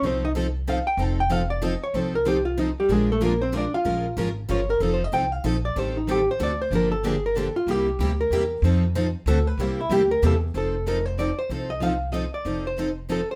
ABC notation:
X:1
M:3/4
L:1/8
Q:"Swing" 1/4=188
K:Fmix
V:1 name="Hollow-body jazz guitar"
[Cc] [Ee] z2 f g | a g f d e _d | c B G F E [G,G] | [_A,_A] [=A,=A] [B,B] [Cc] [Dd] [Ff]- |
[Ff]2 z2 _d B | (3A c e g f e d | c E G c d c | B A _A B =A F |
G3 B3 | z4 A =B | c =E G B A z | A2 B c d c- |
c e f2 e d- | d c2 z A c |]
V:2 name="Steel-string acoustic guitar"
[F,CEA] z [F,CEA] z [F,CEA] z | [F,CEA] z [F,CEA] z [F,CEA] z | [F,CEA] z [F,CEA] z [F,CEA] z | [F,_A,DFB] z [F,A,DFB] z [F,A,DFB] z |
[F,_A,_DFB] z [F,A,DFB] z [F,A,DFB] z | [F,CEA] z [F,CEA] z [F,CEA] z | [E,G,CGA] z [E,G,CGA] z [D,A,C^FA] z | [D,F,B,DG] z [D,F,B,DG] z [D,F,B,DG] z |
[C,G,B,=EG] z [C,G,B,EG] z [C,G,B,EG] z | [F,CEA] z [F,CEA] z [D,A,C^FA] z | [C,G,B,=EG] z [C,G,B,EG] z [C,G,B,EG] z | [F,CEA] z [F,CEA] z [F,CEA] z |
[F,CEA] z [F,CEA] z [F,CEA] z | [F,CEA] z [F,CEA] z [F,CEA] z |]
V:3 name="Steel-string acoustic guitar"
[F,CEA] z [F,CEA] z [F,CEA] z | [F,CEA] z [F,CEA] z [F,CEA] z | [F,CEA] z [F,CEA] z [F,CEA] z | [F,_A,DFB] z [F,A,DFB] z [F,A,DFB] z |
[F,_A,_DFB] z [F,A,DFB] z [F,A,DFB] z | [F,CEA] z [F,CEA] z [F,CEA] z | [E,G,CGA] z [E,G,CGA] z [D,A,C^FA] z | [D,F,B,DG] z [D,F,B,DG] z [D,F,B,DG] z |
[C,G,B,=EG] z [C,G,B,EG] z [C,G,B,EG] z | [F,CEA] z [F,CEA] z [D,A,C^FA] z | [C,G,B,=EG] z [C,G,B,EG] z [C,G,B,EG] z | [F,CEA] z [F,CEA] z [F,CEA] z |
[F,CEA] z [F,CEA] z [F,CEA] z | [F,CEA] z [F,CEA] z [F,CEA] z |]
V:4 name="Upright bass" clef=bass
C,,6 | F,,,6 | C,,6 | B,,,6 |
B,,,2 _A,,,2 G,,,2 | F,,,2 C,,2 B,,,2 | A,,,4 D,,2 | G,,,6 |
C,,2 D,,2 =E,,2 | F,,4 D,,2 | C,,2 D,,2 =E,,2 | F,,,6 |
C,,6 | F,,,6 |]